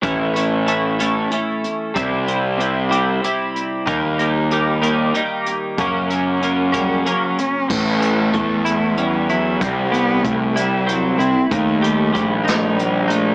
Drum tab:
CC |------|------|------|------|
HH |xxxxxx|xxxxxx|xxxxxx|xxxxxx|
SD |------|------|------|------|
BD |o-----|o-----|o-----|o--o--|

CC |x-----|------|------|
HH |-xxxxx|xxxxxx|xxxxxx|
SD |------|------|---o--|
BD |o-o---|o-o---|o-o---|